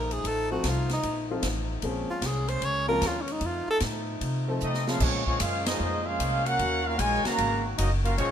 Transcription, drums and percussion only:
0.11 ride medium
0.24 kick soft
0.24 ride medium
0.64 kick soft
0.64 snare medium
0.64 hi-hat pedal medium
0.64 ride medium
0.89 snare medium
0.89 ride soft
1.03 kick soft
1.03 ride medium
1.43 kick soft
1.43 snare medium
1.43 hi-hat pedal medium
1.43 ride medium
1.82 kick soft
1.82 ride medium
2.22 kick soft
2.22 snare medium
2.22 hi-hat pedal medium
2.22 ride medium
2.48 ride medium
2.62 kick soft
2.62 ride medium
3.02 kick soft
3.02 snare medium
3.02 hi-hat pedal medium
3.02 ride medium
3.28 ride medium
3.41 kick soft
3.41 ride medium
3.80 kick soft
3.80 snare medium
3.80 hi-hat pedal medium
3.80 ride medium
4.21 kick soft
4.21 ride medium
4.60 hi-hat pedal medium
4.74 snare medium
4.87 snare medium
5.00 kick medium
5.00 crash medium
5.27 kick medium
5.40 kick soft
5.40 hi-hat pedal medium
5.40 ride medium
5.66 snare loud
5.66 ride medium
6.20 kick soft
6.20 hi-hat pedal medium
6.20 ride medium
6.46 ride medium
6.59 kick soft
6.59 ride medium
6.99 kick soft
6.99 hi-hat pedal medium
6.99 ride medium
7.25 snare medium
7.25 ride medium
7.38 kick soft
7.38 ride medium
7.78 kick soft
7.78 hi-hat pedal medium
7.78 ride medium
8.05 ride medium
8.18 kick soft
8.18 ride medium

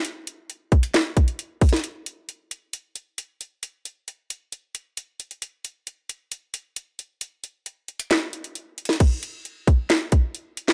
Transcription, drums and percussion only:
0.05 closed hi-hat medium
0.27 closed hi-hat medium
0.50 closed hi-hat medium
0.72 kick loud
0.72 closed hi-hat medium
0.83 closed hi-hat medium
0.94 snare loud
0.94 clap medium
0.94 closed hi-hat medium
1.17 kick medium
1.17 closed hi-hat medium
1.28 closed hi-hat medium
1.39 closed hi-hat medium
1.61 kick loud
1.61 closed hi-hat medium
1.61 open hi-hat medium
1.69 snare medium
1.69 closed hi-hat medium
1.76 closed hi-hat medium
1.84 closed hi-hat medium
2.06 closed hi-hat medium
2.29 closed hi-hat medium
2.51 closed hi-hat medium
2.73 closed hi-hat medium
2.96 closed hi-hat medium
3.18 closed hi-hat medium
3.41 closed hi-hat medium
3.63 closed hi-hat medium
3.85 closed hi-hat medium
4.08 closed hi-hat medium
4.30 closed hi-hat medium
4.52 closed hi-hat medium
4.75 closed hi-hat medium
4.97 closed hi-hat medium
5.20 closed hi-hat medium
5.31 closed hi-hat soft
5.42 closed hi-hat medium
5.65 closed hi-hat medium
5.87 closed hi-hat medium
6.09 closed hi-hat medium
6.32 closed hi-hat medium
6.54 closed hi-hat medium
6.76 closed hi-hat medium
6.99 closed hi-hat medium
7.21 closed hi-hat medium
7.44 closed hi-hat medium
7.66 closed hi-hat medium
7.88 closed hi-hat soft
8.00 closed hi-hat medium
8.11 snare loud
8.11 clap medium
8.11 closed hi-hat medium
8.33 closed hi-hat medium
8.44 closed hi-hat soft
8.55 closed hi-hat medium
8.78 closed hi-hat medium
8.85 snare medium
8.85 closed hi-hat medium
8.93 closed hi-hat medium
9.00 kick loud
9.00 closed hi-hat medium
9.00 crash medium
9.23 closed hi-hat medium
9.45 closed hi-hat medium
9.67 kick loud
9.67 closed hi-hat medium
9.90 snare loud
9.90 clap medium
9.90 closed hi-hat medium
10.12 kick medium
10.12 closed hi-hat medium
10.35 closed hi-hat medium
10.57 closed hi-hat medium
10.68 snare medium
10.68 clap medium

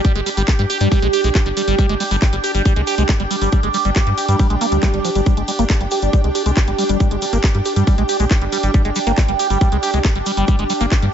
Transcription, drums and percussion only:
0.05 kick loud
0.05 closed hi-hat medium
0.05 shaker soft
0.15 closed hi-hat medium
0.26 open hi-hat loud
0.26 shaker medium
0.37 closed hi-hat medium
0.37 shaker soft
0.48 kick loud
0.48 clap loud
0.48 closed hi-hat medium
0.48 shaker soft
0.59 closed hi-hat medium
0.70 open hi-hat loud
0.70 shaker medium
0.80 closed hi-hat medium
0.80 shaker medium
0.92 kick loud
0.92 open hi-hat medium
0.92 shaker soft
1.02 closed hi-hat medium
1.13 open hi-hat loud
1.13 shaker medium
1.24 closed hi-hat medium
1.24 shaker medium
1.35 kick loud
1.35 clap loud
1.35 closed hi-hat medium
1.35 shaker soft
1.46 closed hi-hat medium
1.57 open hi-hat loud
1.57 shaker medium
1.68 closed hi-hat medium
1.68 shaker soft
1.79 kick loud
1.79 closed hi-hat medium
1.79 shaker soft
1.89 closed hi-hat medium
2.00 open hi-hat loud
2.00 shaker medium
2.11 closed hi-hat medium
2.11 shaker medium
2.22 kick loud
2.22 clap loud
2.22 closed hi-hat medium
2.22 shaker soft
2.33 closed hi-hat medium
2.44 open hi-hat loud
2.44 shaker medium
2.54 closed hi-hat medium
2.54 shaker medium
2.65 kick loud
2.65 closed hi-hat medium
2.65 shaker soft
2.76 closed hi-hat medium
2.87 open hi-hat loud
2.87 shaker medium
2.98 closed hi-hat medium
2.98 shaker soft
3.09 kick loud
3.09 clap loud
3.09 closed hi-hat medium
3.09 shaker soft
3.20 closed hi-hat medium
3.31 open hi-hat loud
3.31 shaker medium
3.42 closed hi-hat medium
3.42 shaker medium
3.52 kick loud
3.52 closed hi-hat medium
3.52 shaker soft
3.63 closed hi-hat medium
3.74 open hi-hat loud
3.74 shaker medium
3.85 closed hi-hat medium
3.85 shaker soft
3.96 kick loud
3.96 clap loud
3.96 closed hi-hat medium
3.96 shaker soft
4.07 closed hi-hat medium
4.18 open hi-hat loud
4.18 shaker medium
4.29 closed hi-hat medium
4.29 shaker soft
4.39 kick loud
4.39 open hi-hat medium
4.39 shaker soft
4.50 closed hi-hat medium
4.61 open hi-hat loud
4.61 shaker medium
4.72 closed hi-hat medium
4.72 shaker soft
4.83 kick loud
4.83 clap loud
4.83 closed hi-hat medium
4.83 shaker soft
4.94 closed hi-hat medium
5.05 open hi-hat loud
5.05 shaker medium
5.15 closed hi-hat medium
5.15 shaker medium
5.26 kick loud
5.26 closed hi-hat medium
5.26 shaker soft
5.37 closed hi-hat medium
5.48 open hi-hat loud
5.48 shaker medium
5.59 closed hi-hat medium
5.59 shaker medium
5.70 kick loud
5.70 clap loud
5.70 closed hi-hat medium
5.70 shaker soft
5.81 closed hi-hat medium
5.91 open hi-hat loud
5.91 shaker medium
6.02 closed hi-hat medium
6.02 shaker soft
6.13 kick loud
6.13 closed hi-hat medium
6.13 shaker soft
6.24 closed hi-hat medium
6.35 open hi-hat loud
6.35 shaker loud
6.46 closed hi-hat medium
6.46 shaker medium
6.56 kick loud
6.56 clap loud
6.56 closed hi-hat medium
6.56 shaker soft
6.68 closed hi-hat medium
6.79 open hi-hat loud
6.79 shaker medium
6.89 closed hi-hat medium
6.89 shaker medium
7.00 kick loud
7.00 closed hi-hat medium
7.00 shaker soft
7.11 closed hi-hat medium
7.22 open hi-hat loud
7.22 shaker medium
7.33 closed hi-hat medium
7.33 shaker medium
7.44 kick loud
7.44 clap loud
7.44 closed hi-hat medium
7.44 shaker soft
7.55 closed hi-hat medium
7.65 open hi-hat loud
7.65 shaker medium
7.76 closed hi-hat medium
7.76 shaker soft
7.87 kick loud
7.87 open hi-hat medium
7.87 shaker soft
7.98 closed hi-hat medium
8.09 open hi-hat loud
8.09 shaker medium
8.19 closed hi-hat medium
8.19 shaker medium
8.31 kick loud
8.31 clap loud
8.31 closed hi-hat medium
8.31 shaker soft
8.42 closed hi-hat medium
8.52 open hi-hat loud
8.52 shaker medium
8.63 closed hi-hat medium
8.63 shaker medium
8.74 kick loud
8.74 closed hi-hat medium
8.74 shaker soft
8.85 closed hi-hat medium
8.96 open hi-hat loud
8.96 shaker loud
9.07 closed hi-hat medium
9.07 shaker medium
9.18 kick loud
9.18 clap loud
9.18 closed hi-hat medium
9.18 shaker soft
9.29 closed hi-hat medium
9.39 open hi-hat loud
9.39 shaker medium
9.50 closed hi-hat medium
9.50 shaker medium
9.61 kick loud
9.61 closed hi-hat medium
9.61 shaker soft
9.72 closed hi-hat medium
9.83 open hi-hat loud
9.83 shaker medium
9.93 closed hi-hat medium
9.93 shaker medium
10.05 kick loud
10.05 clap loud
10.05 closed hi-hat medium
10.05 shaker soft
10.15 closed hi-hat medium
10.26 open hi-hat loud
10.26 shaker medium
10.37 closed hi-hat medium
10.37 shaker medium
10.48 kick loud
10.48 closed hi-hat medium
10.48 shaker soft
10.59 closed hi-hat medium
10.70 open hi-hat loud
10.70 shaker medium
10.80 closed hi-hat medium
10.80 shaker medium
10.92 kick loud
10.92 clap loud
10.92 closed hi-hat medium
10.92 shaker soft
11.02 closed hi-hat medium

